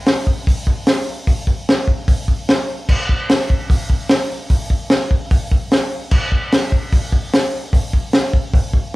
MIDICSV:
0, 0, Header, 1, 2, 480
1, 0, Start_track
1, 0, Tempo, 403497
1, 1525, Time_signature, 4, 2, 24, 8
1, 10653, End_track
2, 0, Start_track
2, 0, Title_t, "Drums"
2, 76, Note_on_c, 9, 46, 65
2, 79, Note_on_c, 9, 38, 108
2, 194, Note_off_c, 9, 46, 0
2, 198, Note_off_c, 9, 38, 0
2, 320, Note_on_c, 9, 36, 86
2, 439, Note_off_c, 9, 36, 0
2, 561, Note_on_c, 9, 36, 110
2, 574, Note_on_c, 9, 46, 64
2, 680, Note_off_c, 9, 36, 0
2, 693, Note_off_c, 9, 46, 0
2, 796, Note_on_c, 9, 36, 86
2, 915, Note_off_c, 9, 36, 0
2, 1031, Note_on_c, 9, 46, 61
2, 1034, Note_on_c, 9, 38, 116
2, 1150, Note_off_c, 9, 46, 0
2, 1153, Note_off_c, 9, 38, 0
2, 1514, Note_on_c, 9, 36, 108
2, 1514, Note_on_c, 9, 46, 57
2, 1633, Note_off_c, 9, 36, 0
2, 1633, Note_off_c, 9, 46, 0
2, 1750, Note_on_c, 9, 36, 80
2, 1869, Note_off_c, 9, 36, 0
2, 2006, Note_on_c, 9, 46, 53
2, 2010, Note_on_c, 9, 38, 112
2, 2125, Note_off_c, 9, 46, 0
2, 2129, Note_off_c, 9, 38, 0
2, 2231, Note_on_c, 9, 36, 86
2, 2350, Note_off_c, 9, 36, 0
2, 2473, Note_on_c, 9, 46, 59
2, 2474, Note_on_c, 9, 36, 112
2, 2592, Note_off_c, 9, 46, 0
2, 2593, Note_off_c, 9, 36, 0
2, 2714, Note_on_c, 9, 36, 84
2, 2833, Note_off_c, 9, 36, 0
2, 2957, Note_on_c, 9, 46, 57
2, 2961, Note_on_c, 9, 38, 107
2, 3076, Note_off_c, 9, 46, 0
2, 3080, Note_off_c, 9, 38, 0
2, 3435, Note_on_c, 9, 49, 97
2, 3436, Note_on_c, 9, 36, 113
2, 3554, Note_off_c, 9, 49, 0
2, 3555, Note_off_c, 9, 36, 0
2, 3679, Note_on_c, 9, 36, 78
2, 3798, Note_off_c, 9, 36, 0
2, 3919, Note_on_c, 9, 46, 63
2, 3923, Note_on_c, 9, 38, 116
2, 4038, Note_off_c, 9, 46, 0
2, 4042, Note_off_c, 9, 38, 0
2, 4164, Note_on_c, 9, 36, 85
2, 4283, Note_off_c, 9, 36, 0
2, 4400, Note_on_c, 9, 36, 121
2, 4406, Note_on_c, 9, 46, 66
2, 4519, Note_off_c, 9, 36, 0
2, 4525, Note_off_c, 9, 46, 0
2, 4636, Note_on_c, 9, 36, 90
2, 4755, Note_off_c, 9, 36, 0
2, 4868, Note_on_c, 9, 46, 64
2, 4871, Note_on_c, 9, 38, 113
2, 4987, Note_off_c, 9, 46, 0
2, 4990, Note_off_c, 9, 38, 0
2, 5350, Note_on_c, 9, 46, 60
2, 5354, Note_on_c, 9, 36, 115
2, 5469, Note_off_c, 9, 46, 0
2, 5473, Note_off_c, 9, 36, 0
2, 5593, Note_on_c, 9, 36, 74
2, 5712, Note_off_c, 9, 36, 0
2, 5826, Note_on_c, 9, 46, 57
2, 5830, Note_on_c, 9, 38, 107
2, 5945, Note_off_c, 9, 46, 0
2, 5948, Note_off_c, 9, 38, 0
2, 6076, Note_on_c, 9, 36, 90
2, 6195, Note_off_c, 9, 36, 0
2, 6315, Note_on_c, 9, 46, 55
2, 6318, Note_on_c, 9, 36, 113
2, 6434, Note_off_c, 9, 46, 0
2, 6437, Note_off_c, 9, 36, 0
2, 6561, Note_on_c, 9, 36, 93
2, 6680, Note_off_c, 9, 36, 0
2, 6798, Note_on_c, 9, 46, 58
2, 6802, Note_on_c, 9, 38, 109
2, 6917, Note_off_c, 9, 46, 0
2, 6921, Note_off_c, 9, 38, 0
2, 7270, Note_on_c, 9, 49, 99
2, 7275, Note_on_c, 9, 36, 114
2, 7388, Note_off_c, 9, 49, 0
2, 7394, Note_off_c, 9, 36, 0
2, 7516, Note_on_c, 9, 36, 79
2, 7635, Note_off_c, 9, 36, 0
2, 7760, Note_on_c, 9, 46, 64
2, 7764, Note_on_c, 9, 38, 109
2, 7879, Note_off_c, 9, 46, 0
2, 7883, Note_off_c, 9, 38, 0
2, 7997, Note_on_c, 9, 36, 86
2, 8116, Note_off_c, 9, 36, 0
2, 8236, Note_on_c, 9, 46, 62
2, 8238, Note_on_c, 9, 36, 115
2, 8355, Note_off_c, 9, 46, 0
2, 8357, Note_off_c, 9, 36, 0
2, 8475, Note_on_c, 9, 36, 92
2, 8594, Note_off_c, 9, 36, 0
2, 8724, Note_on_c, 9, 46, 62
2, 8727, Note_on_c, 9, 38, 107
2, 8843, Note_off_c, 9, 46, 0
2, 8846, Note_off_c, 9, 38, 0
2, 9196, Note_on_c, 9, 36, 116
2, 9206, Note_on_c, 9, 46, 61
2, 9315, Note_off_c, 9, 36, 0
2, 9325, Note_off_c, 9, 46, 0
2, 9438, Note_on_c, 9, 36, 81
2, 9557, Note_off_c, 9, 36, 0
2, 9672, Note_on_c, 9, 46, 60
2, 9675, Note_on_c, 9, 38, 120
2, 9791, Note_off_c, 9, 46, 0
2, 9794, Note_off_c, 9, 38, 0
2, 9915, Note_on_c, 9, 36, 88
2, 10034, Note_off_c, 9, 36, 0
2, 10154, Note_on_c, 9, 36, 119
2, 10166, Note_on_c, 9, 46, 55
2, 10273, Note_off_c, 9, 36, 0
2, 10285, Note_off_c, 9, 46, 0
2, 10391, Note_on_c, 9, 36, 92
2, 10510, Note_off_c, 9, 36, 0
2, 10653, End_track
0, 0, End_of_file